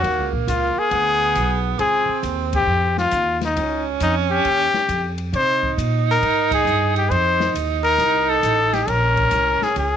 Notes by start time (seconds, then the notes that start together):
Already playing: F#4
0.03 D#2 A#3, kick, ride
0.19 C#2
0.32 A#1, kick
0.47 C#2 F4, kick, hi-hat pedal, ride
0.77 G#4, muted upright bass stroke
0.91 D2 B3, kick, ride
1.35 B1, kick, hi-hat pedal, ride
1.79 C#2 C4 G#4, kick, ride
2.09 muted upright bass stroke
2.23 D#2, kick, hi-hat pedal, ride
2.53 G4, kick, ride
2.66 F2
2.97 F4, snare
3.11 D#2, kick, hi-hat pedal, ride
3.41 D#4, snare, ride
3.55 C#2 C#4, kick, ride
4.00 F2 D#4, kick, hi-hat pedal, ride
4.31 G4
4.45 D#2, kick, ride
4.73 muted upright bass stroke, snare
4.88 F2, kick, hi-hat pedal, ride
5.18 ride
5.33 C3 D#4 C5, kick, ride
5.63 kick
5.77 A#2, kick, hi-hat pedal, ride
6.11 A#4
6.22 G#2, kick, ride
6.51 G#4, kick, ride
6.65 G2, hi-hat pedal
6.96 G4, ride
7.10 F2 D#4 C5, kick, ride
7.40 snare
7.54 D#2, kick, hi-hat pedal, ride
7.84 A#4, ride
7.98 C2, kick, ride
8.30 A4
8.43 A1, kick, hi-hat pedal, ride
8.73 G4, snare, ride
8.87 A#1 C#4 A#4, kick, ride
9.17 kick, ride
9.31 C2, hi-hat pedal, ride
9.61 G#4, muted upright bass stroke, snare
9.76 C#2 G#4, kick, ride